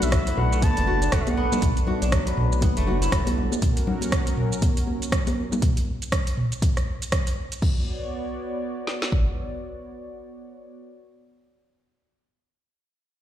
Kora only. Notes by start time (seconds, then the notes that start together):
Already playing: A3 B3 D4 E4 F#4 A4
0.27 E4
0.52 A3
0.62 B3
0.77 D4
0.87 F#4
1.02 D4
1.12 A3
1.37 B3
1.52 A3
1.87 F#4
2.02 D4
2.12 F#3
2.27 B4
2.62 B3
2.77 A3
2.87 F#4
3.02 E4
3.12 A4